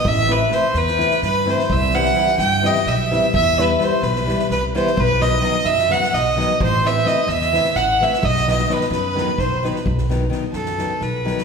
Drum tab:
SD |--o-o-ooooo-oo|--ooooo-ooo-o-|--o-o-ooooo-oo|--o-o-ooooo-o-|
BD |o-------------|o-------------|o-------------|o-------------|

SD |--o-o-ooooo-oo|-oooooo-o-o-oo|-oo-o-ooo-o-oo|
BD |o-------------|o---------o---|o-------------|